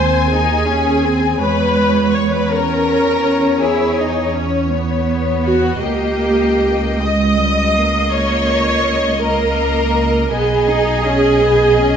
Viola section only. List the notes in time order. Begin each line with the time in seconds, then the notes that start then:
Already playing: C5
0.30 G#4
1.40 B4
2.14 C#5
2.32 B4
2.50 A#4
3.62 G#4
5.42 F#4
5.81 G4
7.00 D#5
8.11 C#5
9.20 A#4
10.29 G#4